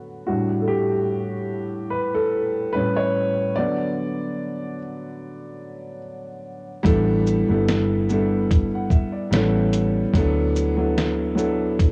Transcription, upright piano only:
0.00 0.24 D3 soft
0.00 0.24 F#3 soft
0.00 0.24 B3 medium
0.27 1.47 A2 medium
0.27 1.47 G3 soft
0.27 1.47 D4 medium
0.27 0.63 F#4 medium
0.62 0.68 A4 medium
0.68 1.95 G4 medium
1.90 2.15 B4 medium
2.14 2.75 A4 medium
2.73 3.31 A2 soft
2.73 3.31 G3 soft
2.73 3.31 C#4 medium
2.73 2.97 B4 medium
2.96 3.51 C#5 medium
3.56 4.76 D3 medium
3.56 4.76 F#3 soft
3.56 4.76 B3 medium
3.56 5.98 D5 loud
6.83 7.24 G3 loud
6.83 7.25 B3 medium
6.83 7.25 D4 loud
6.83 7.26 E4 loud
6.83 7.26 A4 loud
7.49 7.89 G3 medium
7.49 7.90 B3 medium
7.49 7.90 D4 medium
7.49 7.91 E4 medium
7.49 7.91 A4 medium
8.09 8.64 G3 medium
8.09 8.65 B3 medium
8.09 8.65 D4 medium
8.09 8.66 E4 medium
8.09 8.66 A4 medium
8.75 8.91 F#5 medium
8.91 9.13 E5 medium
9.12 9.52 D5 medium
9.31 9.99 G3 medium
9.31 10.00 B3 medium
9.31 10.00 C#4 medium
9.31 10.00 E4 medium
9.31 10.01 A4 loud
10.14 10.54 F#3 loud
10.14 10.55 B3 loud
10.14 10.55 D4 loud
10.14 10.56 E4 medium
10.14 10.56 A4 loud
10.77 11.18 F#3 medium
10.77 11.18 B3 medium
10.77 11.19 D4 medium
10.77 11.19 E4 medium
10.77 11.19 A4 medium
11.35 11.92 F#3 medium
11.35 11.92 B3 medium
11.35 11.92 D4 medium
11.35 11.92 E4 medium
11.35 11.92 A4 medium

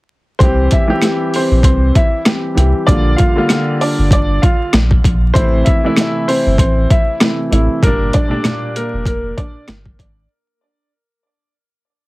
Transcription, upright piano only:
0.39 0.68 C4 medium
0.39 0.67 C5 loud
0.72 1.30 E4 medium
0.72 1.30 E5 medium
1.36 1.63 C4 medium
1.36 1.62 C5 medium
1.64 1.92 C4 medium
1.64 1.92 C5 medium
1.96 2.24 E4 medium
1.96 2.23 E5 medium
2.87 3.15 D4 medium
2.87 3.15 D5 loud
3.16 3.76 F4 medium
3.16 3.76 F5 medium
3.81 4.09 D4 medium
3.81 4.09 D5 medium
4.13 4.40 D4 medium
4.13 4.40 D5 loud
4.42 4.70 F4 medium
4.42 4.70 F5 medium
5.34 5.63 C4 medium
5.34 5.62 C5 loud
5.65 6.24 E4 medium
5.65 6.24 E5 medium
6.28 6.56 C4 medium
6.28 6.56 C5 loud
6.59 6.87 C4 medium
6.59 6.87 C5 medium
6.91 7.19 E4 medium
6.91 7.18 E5 medium
7.83 8.11 A#3 medium
7.83 8.11 A#4 loud
8.14 8.72 D4 medium
8.14 8.72 D5 medium
8.76 9.04 A#3 medium
8.76 9.04 A#4 loud
9.07 9.35 A#3 medium
9.07 9.34 A#4 medium
9.37 9.66 D4 medium
9.37 9.65 D5 medium

